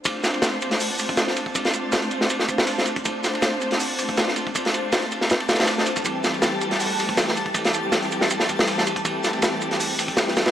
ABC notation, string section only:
X:1
M:4/4
L:1/16
Q:"Swing 16ths" 1/4=160
K:Dm
V:1 name="String section"
[A,CDFc]8- [A,CDFc]2 [A,CDFc]6 | [A,CDFc]8- [A,CDFc]2 [A,CDFc]6 | [A,CDFc]8- [A,CDFc]2 [A,CDFc]6 | [A,CDFc]8- [A,CDFc]2 z [A,CDFc]4- [A,CDFc] |
[E,G,A,CG]8- [E,G,A,CG]2 [E,G,A,CG]6 | [E,G,A,CG]8- [E,G,A,CG]2 [E,G,A,CG]6 | [E,G,A,CG]8- [E,G,A,CG]2 [E,G,A,CG]6 |]